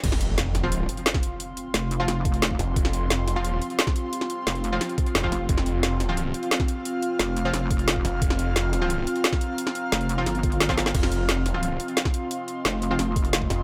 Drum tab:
CC |x---------------|----------------|----------------|----------------|
HH |x-x-x-x-x-xxx-x-|x-x-x-x-x-xxx-x-|x-x-x-x-x-xxx-x-|x-x-xxx-xxxxx-x-|
SD |-o--o-o-----oo--|----o---o---o-o-|-o--o-o-----oo--|-o--o---o---o-o-|
BD |o------------o--|----------o--o--|o------------o--|----------o--o--|

CC |----------------|----------------|----------------|----------------|
HH |x-x-x-x-x-xxx-x-|x-x-x-x-x-xxx-x-|x-x-x-x-x-xxx-x-|x-x-xxx-xxxxx-x-|
SD |-o--o-o-----oo--|----o---o---o-o-|-o--o-o-----oo--|-o--o---o---oooo|
BD |o------------o--|----------o--o--|o------------o--|----------o--o--|

CC |x---------------|----------------|
HH |x-x-x-x-x-xxx-x-|x-x-x-x-x-xxx-x-|
SD |-o--o-o-----oo--|----o---o---o-o-|
BD |o------------o--|----------o--o--|